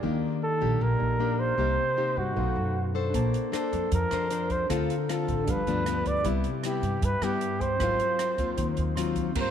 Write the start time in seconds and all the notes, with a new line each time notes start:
0.00 D#2 D#3 A#3 D4 G4 D5
0.05 D#4
0.43 A4
0.61 A#1 A#3 D4 G4
0.81 A#1 A#2 A#4
0.99 A#1 D#4 G4 A#4 D5
1.20 A#3 D4 G4
1.40 C5
1.55 C2 C3 A#3 C4 D#4 G4 A#4
1.61 D#5
1.97 A#3 D#4 G4
2.17 G2 F#4
2.32 D#4 A4
2.36 B1 B2 A3 D#4 B4 F5
2.56 F#2
2.95 D4 A4 C5
3.10 D4
3.14 A#1 A#3 C5 A5, kick, closed hi-hat
3.34 closed hi-hat
3.52 D4 A4 C5, cross-stick, closed hi-hat
3.73 F2, closed hi-hat
3.92 F2 F3 A#4, kick, closed hi-hat
4.11 F2 D4 A4 C5, cross-stick, closed hi-hat
4.30 D4 A4 C5, closed hi-hat
4.50 C5, kick, closed hi-hat
4.67 D2 D3 C4 D4 A4 C5, kick, cross-stick, closed hi-hat
4.71 F4 F5
4.90 closed hi-hat
5.09 C4 F4 A4, cross-stick, closed hi-hat
5.28 A1, kick, closed hi-hat
5.44 G1 G2 F3 D4 G4, kick, closed hi-hat
5.48 B3 D4 B4 F5
5.67 D2 F3 B3 D4, closed hi-hat
5.86 F3 B3 D4, cross-stick, closed hi-hat
6.05 D5, kick, closed hi-hat
6.23 C2 C3 G3 B3 E4 G4 B4, kick, closed hi-hat
6.27 E5
6.44 closed hi-hat
6.63 G3 B3 E4 G4, cross-stick, closed hi-hat
6.82 G2, closed hi-hat
7.02 G2 B4, kick, closed hi-hat
7.21 G2 G3 B3 E4 G4, cross-stick, closed hi-hat
7.41 closed hi-hat
7.61 C5, kick, closed hi-hat
7.76 G#1 C4, kick, cross-stick, closed hi-hat
7.81 G#2 F#3 C4 F4 A#4 F5
8.00 closed hi-hat
8.19 cross-stick, closed hi-hat
8.38 D#2 F#3 C4 F4, kick, closed hi-hat
8.57 D#2 D#3, kick, closed hi-hat
8.77 D#2, closed hi-hat
8.96 F#3 C4 F4 C6, cross-stick, closed hi-hat
9.16 kick, closed hi-hat
9.32 G2 G3 C4, kick, crash
9.36 A#3 F4 A#4 F5
9.41 C5